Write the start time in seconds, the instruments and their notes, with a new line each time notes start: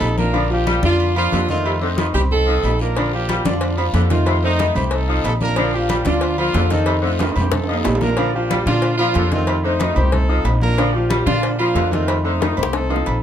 Already playing: saxophone section F3, horn section C4 D#4 A4, grand piano D#4 D#5 D#6
0.01 upright bass A#1, high conga, low timbale, low agogo, short guiro
0.18 grand piano A#3 A#4 A#5, horn section D4 F4 A#4, high conga, short guiro
0.33 grand piano D3 D4 D5, saxophone section F3, high conga, low agogo, long guiro
0.50 grand piano F3 F4 F5, horn section A#3 D4 G4, high conga
0.67 saxophone section G3, high conga, low timbale, low agogo, short guiro
0.83 upright bass F2, grand piano D3 D4 D5, horn section A#3 D4 F4, high conga, short guiro
1.00 high conga, low agogo, long guiro
1.15 saxophone section F3, grand piano F3 F4 F5, horn section A#3 D4 F4, high conga, low agogo
1.32 upright bass F2, saxophone section D3, high conga, low timbale, low agogo, short guiro
1.49 grand piano D#3 D#4 D#5, horn section A3 C4 F4, high conga, short guiro
1.65 saxophone section C3, high conga, low agogo, long guiro
1.81 saxophone section D3, grand piano C4 C5 C6, horn section D#4, high conga
1.96 saxophone section D#3, grand piano D#4 D#5 D#6, horn section F4, high conga, low timbale, low agogo, short guiro
2.14 upright bass C2, grand piano C4 C5 C6, horn section G4, high conga, low conga, low agogo, short guiro
2.31 horn section C4 D#4 A4, high conga, low conga, long guiro
2.46 saxophone section F3, grand piano D#4 D#5 D#6, high conga
2.63 upright bass A#1, high conga, low timbale, low agogo, short guiro
2.79 grand piano A#3 A#4 A#5, horn section D4 F4 A#4, short guiro
2.95 grand piano D3 D4 D5, saxophone section F3, cowbell, high conga, low agogo, long guiro
3.12 grand piano F3 F4 F5, horn section A#3 D4 G4, high conga
3.28 saxophone section G3, cowbell, high conga, low timbale, low agogo, short guiro
3.45 upright bass F2, grand piano D3 D4 D5, horn section A#3 D4 F4, cowbell, high conga, short guiro
3.61 cowbell, high conga, low agogo, long guiro
3.77 saxophone section F3, grand piano F3 F4 F5, high conga, low agogo
3.93 upright bass F2, saxophone section D3, cowbell, high conga, low timbale, low agogo, short guiro
4.10 grand piano D#3 D#4 D#5, horn section A3 C4 F4, cowbell, high conga, short guiro
4.26 saxophone section C3, cowbell, high conga, low agogo, long guiro
4.43 saxophone section D3, horn section A3 C4 D#4, grand piano C4 C5 C6, high conga
4.58 saxophone section D#3, grand piano D#4 D#5 D#6, cowbell, high conga, low timbale, low agogo, short guiro
4.75 upright bass C2, grand piano C4 C5 C6, horn section G4, high conga, low conga, low agogo, short guiro
4.91 horn section C4 D#4 A4, cowbell, high conga, long guiro
5.08 saxophone section F3, grand piano D#4 D#5 D#6, high conga
5.24 upright bass A#1, horn section A4, cowbell, high conga, low timbale, low agogo, short guiro
5.40 grand piano A#3 A#4 A#5, horn section D4 F4 A#4, high conga, short guiro
5.56 grand piano D3 D4 D5, saxophone section F3, cowbell, high conga, low agogo, long guiro
5.73 grand piano F3 F4 F5, horn section A#3 D4 G4, high conga
5.89 saxophone section G3, cowbell, high conga, low timbale, low agogo, short guiro
6.05 upright bass D2, grand piano D3 D4 D5, horn section A#3 D4 F4, cowbell, high conga, short guiro
6.21 cowbell, high conga, low agogo, long guiro
6.38 grand piano F3 F4 F5, saxophone section F3, horn section A#3 D4 F4, high conga, low agogo
6.53 upright bass F2, saxophone section D3, cowbell, high conga, low timbale, low agogo, short guiro
6.70 grand piano D#3 D#4 D#5, horn section C4 D#4 A4, cowbell, high conga, short guiro
6.86 saxophone section C3, cowbell, high conga, low agogo, long guiro
7.02 saxophone section D3, horn section A3 C4 F4, grand piano C4 C5 C6, high conga
7.19 saxophone section D#3, grand piano D#4 D#5 D#6, cowbell, high conga, high timbale, low agogo, short guiro
7.30 high timbale
7.36 upright bass F2, grand piano C4 C5 C6, horn section G4, high conga, low conga, low agogo, short guiro
7.41 high timbale
7.52 horn section C4 D#4 A4, cowbell, high bongo, high conga, low conga, high timbale, long guiro
7.64 high timbale
7.68 saxophone section F3, grand piano D#4 D#5 D#6, high conga
7.73 low timbale
7.84 upright bass A#1, cowbell, low bongo, high conga, low timbale, low agogo, short guiro
7.95 low timbale
8.01 grand piano A#3 A#4 A#5, horn section D4 F4 A#4, low bongo, high conga, short guiro
8.07 low timbale
8.17 grand piano D3 D4 D5, saxophone section F3, cowbell, low agogo
8.34 grand piano F3 F4 F5, horn section A#3 D4 G4, high conga
8.50 saxophone section G3, cowbell, high conga, low timbale, low agogo
8.66 upright bass A#2, grand piano D3 D4 D5, horn section A#3 D4 F4, cowbell, high conga
8.82 cowbell, high conga, low agogo
8.98 saxophone section F3, grand piano F3 F4 F5, horn section A#3 D4 F4, high conga, low agogo
9.14 upright bass F2, saxophone section D3, cowbell, high conga, low timbale, low agogo
9.31 grand piano D#3 D#4 D#5, horn section A3 C4 F4, cowbell, high conga
9.47 saxophone section C3, cowbell, high conga, low agogo
9.63 saxophone section D3, horn section A3 C4 D#4, grand piano C4 C5 C6, high conga
9.79 saxophone section D#3, grand piano D#4 D#5 D#6, cowbell, high conga, low timbale, low agogo
9.95 upright bass C2, grand piano C4 C5 C6, horn section G4, high conga, low conga, low agogo
10.11 horn section C4 D#4 A4, cowbell, high conga, low conga
10.29 saxophone section F3, grand piano D#4 D#5 D#6, high conga
10.44 upright bass A#1, cowbell, high conga, low timbale, low agogo
10.60 grand piano A#3 A#4 A#5, horn section D4 F4 A#4, high conga
10.78 grand piano D3 D4 D5, saxophone section F3, cowbell, low agogo
10.93 grand piano F3 F4 F5, horn section A#3 D4 G4, high conga
11.10 saxophone section G3, cowbell, high conga, low timbale, low agogo
11.25 upright bass A#2, grand piano D3 D4 D5, horn section A#3 D4 F4, cowbell, high conga
11.43 cowbell, high conga, low agogo
11.53 horn section G4
11.57 grand piano F3 F4 F5, saxophone section F3, horn section A#3 D4 F4, high conga, low agogo
11.74 upright bass F2, saxophone section D3, cowbell, high conga, low timbale, low agogo
11.90 grand piano D#3 D#4 D#5, horn section A3 C4 F4, cowbell, high conga
12.07 saxophone section C3, cowbell, high conga, low agogo
12.24 saxophone section D3, horn section A3 C4 D#4, grand piano C4 C5 C6, high conga
12.40 saxophone section D#3, grand piano D#4 D#5 D#6, cowbell, high bongo, high conga, low timbale, low agogo
12.57 upright bass C2, grand piano C4 C5 C6, horn section G4, high conga, low conga, low agogo
12.63 high bongo
12.73 horn section C4 D#4 A4, cowbell, high bongo, high conga
12.89 saxophone section F3, grand piano D#4 D#5 D#6, high conga, high timbale
12.96 low bongo
13.06 upright bass A#1, cowbell, high conga, low agogo